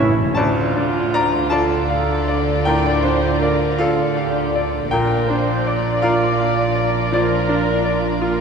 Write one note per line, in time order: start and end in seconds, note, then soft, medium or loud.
0.00 0.21 A1 medium
0.00 0.37 E2 medium
0.00 0.21 A2 medium
0.00 0.15 E3 medium
0.00 0.34 C#4 soft
0.00 0.36 C#4 medium
0.00 0.37 C#4 soft
0.00 0.33 E4 soft
0.00 0.37 E4 medium
0.00 0.14 C#5 soft
0.00 0.37 E5 medium
0.09 0.16 A2 loud
0.18 0.23 A2 loud
0.24 0.31 A2 loud
0.35 4.86 D2 medium
0.35 2.61 D2 medium
0.35 4.86 D3 medium
0.35 1.47 D3 medium
0.35 4.87 D4 medium
0.35 1.47 F4 medium
0.35 4.87 F4 medium
0.35 4.86 D5 medium
0.35 1.09 D5 medium
0.35 1.08 A5 medium
0.76 1.36 D4 soft
1.14 1.50 D5 medium
1.14 1.49 A#5 medium
1.50 2.11 F4 medium
1.50 2.64 A4 medium
1.50 2.26 D5 medium
1.50 2.60 A5 medium
1.90 2.50 F5 medium
2.28 2.88 D5 medium
2.65 3.26 A2 medium
2.65 3.75 A#4 medium
2.65 3.03 D5 medium
2.65 3.75 G5 medium
3.02 3.64 D4 medium
3.02 3.40 C5 medium
3.40 3.77 A#4 medium
3.40 4.02 D5 medium
3.79 4.38 F4 soft
3.79 4.16 A4 medium
3.79 4.87 A4 medium
3.79 4.15 F5 medium
4.15 4.52 G4 medium
4.15 4.75 F5 medium
4.53 4.90 A4 medium
4.53 4.91 D5 soft
4.90 8.41 A#1 medium
4.90 8.41 A#2 medium
4.90 7.09 A#2 medium
4.90 8.41 D4 medium
4.90 8.41 F4 medium
4.90 5.27 A#4 medium
4.90 5.98 A#4 medium
4.90 8.41 D5 medium
4.90 5.98 G5 medium
5.28 5.88 D4 soft
5.28 5.64 C5 medium
5.66 7.12 D5 medium
5.66 6.25 D5 soft
6.02 6.61 F4 medium
6.02 7.08 A#4 medium
6.02 6.38 F5 medium
6.40 6.97 F5 medium
6.75 7.12 D5 medium
7.12 7.70 F3 medium
7.12 8.20 F4 soft
7.12 8.22 A#4 medium
7.12 7.83 D5 medium
7.49 8.07 D4 medium
7.85 8.41 D5 medium
8.21 8.41 F4 medium
8.21 8.41 A#4 medium